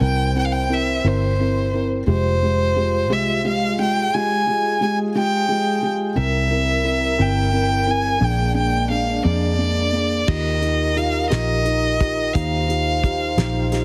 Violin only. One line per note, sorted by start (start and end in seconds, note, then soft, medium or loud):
0.03 0.34 G5 medium
0.39 0.47 G5 medium
0.45 0.54 F5 medium
0.52 0.75 G5 medium
0.74 1.09 E5 medium
1.07 1.84 C5 medium
2.10 3.14 C5 medium
3.13 3.46 E5 medium
3.48 3.78 F5 medium
3.82 4.16 G5 medium
4.14 4.82 G#5 medium
4.83 4.98 G#5 medium
5.18 5.89 G5 medium
6.20 7.23 E5 medium
7.22 7.92 G5 medium
7.91 8.26 G#5 medium
8.24 8.56 G5 medium
8.57 8.89 G5 medium
8.91 9.23 F5 medium
9.26 10.30 D5 medium
10.28 10.99 D#5 medium
10.97 11.30 F5 medium
11.30 12.35 D#5 medium
12.34 13.85 F5 medium